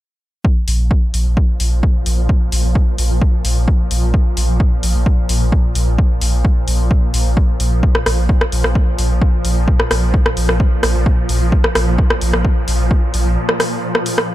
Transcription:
0.45 14.35 A#2 medium
0.45 14.35 F3 medium
0.45 kick loud
0.68 0.79 A#1 medium
0.68 open hi-hat loud
0.80 0.91 A#1 medium
0.91 kick loud
1.14 1.25 A#1 loud
1.14 open hi-hat loud
1.26 1.37 A#1 medium
1.37 kick loud
1.60 1.71 A#1 medium
1.60 open hi-hat loud
1.72 1.83 A#1 medium
1.83 kick loud
2.06 2.17 A#1 loud
2.06 open hi-hat loud
2.18 2.29 A#1 medium
2.29 kick loud
2.52 2.64 A#1 medium
2.52 open hi-hat loud
2.64 2.75 A#1 medium
2.75 kick loud
2.98 3.10 A#1 loud
2.98 open hi-hat loud
3.10 3.21 A#1 medium
3.22 kick loud
3.45 3.56 A#1 medium
3.45 open hi-hat loud
3.57 3.68 A#1 medium
3.68 kick loud
3.91 4.02 A#1 loud
3.91 open hi-hat loud
4.03 4.14 A#1 medium
4.14 kick loud
4.37 4.48 A#1 medium
4.37 open hi-hat loud
4.49 4.60 A#1 medium
4.60 kick loud
4.83 4.94 A#1 loud
4.83 open hi-hat loud
4.95 5.06 A#1 medium
5.06 kick loud
5.29 5.41 A#1 loud
5.29 open hi-hat loud
5.41 5.52 A#1 medium
5.52 kick loud
5.75 5.87 A#1 loud
5.75 open hi-hat loud
5.87 5.98 A#1 medium
5.98 kick loud
6.21 6.33 A#1 medium
6.21 open hi-hat loud
6.33 6.44 A#1 medium
6.45 kick loud
6.68 6.79 A#1 loud
6.68 open hi-hat loud
6.80 6.91 A#1 medium
6.91 kick loud
7.14 7.25 A#1 loud
7.14 open hi-hat loud
7.26 7.37 A#1 medium
7.37 kick loud
7.60 7.71 A#1 loud
7.60 open hi-hat loud
7.72 7.83 A#1 medium
7.83 kick loud
7.95 cross-stick medium
8.06 8.17 A#1 medium
8.06 cross-stick medium
8.06 open hi-hat loud
8.18 8.29 A#1 medium
8.29 kick loud
8.41 cross-stick medium
8.52 8.64 A#1 loud
8.52 open hi-hat loud
8.64 8.75 A#1 medium
8.64 cross-stick medium
8.75 kick loud
8.98 9.10 A#1 medium
8.98 open hi-hat loud
9.10 9.21 A#1 medium
9.22 kick loud
9.45 9.56 A#1 medium
9.45 open hi-hat loud
9.57 9.68 A#1 medium
9.68 kick loud
9.80 cross-stick medium
9.91 10.02 A#1 medium
9.91 cross-stick medium
9.91 open hi-hat loud
10.03 10.14 A#1 medium
10.14 kick loud
10.26 cross-stick medium
10.37 10.48 A#1 loud
10.37 open hi-hat loud
10.49 10.60 A#1 medium
10.49 cross-stick medium
10.60 kick loud
10.83 10.95 A#1 medium
10.83 cross-stick medium
10.83 open hi-hat loud
10.95 11.06 A#1 medium
11.06 kick loud
11.29 11.41 A#1 loud
11.29 open hi-hat loud
11.41 11.52 A#1 medium
11.52 kick loud
11.64 cross-stick medium
11.75 11.87 A#1 loud
11.75 cross-stick loud
11.75 open hi-hat loud
11.87 11.98 A#1 medium
11.98 kick loud
12.10 cross-stick medium
12.21 12.33 A#1 loud
12.21 open hi-hat loud
12.33 12.44 A#1 medium
12.33 cross-stick medium
12.45 kick loud
12.68 12.79 A#1 loud
12.68 open hi-hat medium
12.80 12.91 A#1 medium
12.91 kick loud
13.14 13.25 A#1 medium
13.14 open hi-hat loud
13.26 13.37 A#1 medium
13.49 cross-stick medium
13.60 cross-stick medium
13.60 open hi-hat loud
13.95 cross-stick medium
14.06 open hi-hat loud
14.18 cross-stick medium

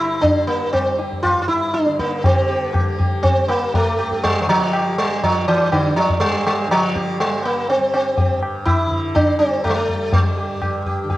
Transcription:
0.00 1.31 G2 medium
0.00 1.87 D3 medium
0.00 0.20 G3 medium
0.00 0.24 E4 medium
0.20 0.75 G3 medium
0.20 0.47 D4 medium
0.20 tabla tin medium
0.20 tabla ge medium
0.47 0.72 A#3 medium
0.73 2.80 G3 medium
0.73 0.97 C4 medium
0.73 tabla na medium
0.73 tabla ge medium
0.98 1.22 G4 soft
0.98 tabla te medium
1.12 tabla ge soft
1.23 1.41 F4 medium
1.23 tabla na medium
1.23 tabla ge medium
1.31 3.91 G2 medium
1.42 1.47 F4 medium
1.48 1.75 E4 medium
1.48 tabla te medium
1.74 1.97 D4 medium
1.74 tabla te medium
1.86 2.24 D3 medium
1.86 tabla te medium
1.99 2.25 A#3 medium
1.99 tabla ke medium
2.11 tabla te medium
2.24 4.46 D3 medium
2.24 2.73 C4 medium
2.24 2.47 G4 soft
2.24 tabla tin loud
2.24 tabla ge medium
2.49 2.72 G4 soft
2.73 2.96 A#3 medium
2.73 2.97 G4 soft
2.73 tabla na medium
2.73 tabla ge medium
2.80 3.37 G3 medium
2.98 3.22 G4 soft
2.98 tabla ge medium
3.23 3.48 C4 loud
3.23 tabla tin medium
3.23 tabla ge medium
3.37 5.02 G3 medium
3.48 3.74 A#3 medium
3.48 tabla na medium
3.74 4.26 A3 medium
3.74 tabla tin medium
3.74 tabla ge medium
3.92 6.12 G2 medium
3.99 4.22 G4 soft
3.99 tabla na medium
4.12 tabla ke medium
4.23 4.41 G3 medium
4.23 tabla tin medium
4.23 tabla ge medium
4.42 4.48 G3 medium
4.46 6.67 D3 medium
4.46 4.98 F3 medium
4.46 tabla na medium
4.61 tabla ke medium
4.73 4.96 G4 soft
4.73 tabla na medium
4.98 5.23 G3 medium
4.98 5.57 G3 medium
5.23 5.47 F3 medium
5.23 tabla tin medium
5.23 tabla ge medium
5.48 5.72 E3 medium
5.48 tabla na medium
5.57 7.22 G3 medium
5.72 5.96 D3 medium
5.72 tabla na medium
5.72 tabla ge medium
5.96 6.20 F3 medium
5.96 tabla te medium
6.09 8.31 G2 medium
6.09 tabla ge medium
6.20 6.45 G3 medium
6.20 tabla tin medium
6.47 6.71 G3 medium
6.47 tabla na medium
6.67 8.85 D3 medium
6.71 7.20 F3 medium
6.71 tabla na medium
6.95 7.18 G4 soft
6.95 tabla ke medium
7.20 7.43 G3 medium
7.20 7.77 G3 medium
7.20 tabla tin medium
7.44 7.69 A#3 medium
7.44 tabla na medium
7.69 7.93 C4 medium
7.69 tabla tin medium
7.77 9.39 G3 medium
7.94 8.39 C4 medium
7.94 tabla na medium
8.17 8.40 G4 soft
8.17 tabla tin medium
8.17 tabla ge medium
8.31 10.49 G2 medium
8.43 tabla na medium
8.65 9.16 E4 medium
8.65 tabla na medium
8.65 tabla ge medium
8.86 11.03 D3 medium
8.91 tabla ge medium
9.15 9.38 D4 medium
9.15 tabla na medium
9.15 tabla ge medium
9.39 9.94 G3 medium
9.39 9.64 C4 medium
9.39 tabla te medium
9.64 9.71 A3 medium
9.64 tabla na medium
9.64 tabla ge medium
9.70 9.76 G3 medium
9.75 10.13 A3 medium
9.89 tabla ge medium
9.94 11.18 G3 medium
10.13 10.82 G3 medium
10.13 tabla tin loud
10.13 tabla ge medium
10.37 10.60 G4 soft
10.49 11.18 G2 medium
10.62 10.84 G4 soft
10.62 tabla na medium
10.62 tabla ge medium
10.86 11.09 G4 soft
10.86 tabla ge medium
11.04 11.18 D3 medium
11.10 11.18 G4 soft
11.10 tabla tin medium
11.10 tabla ge medium

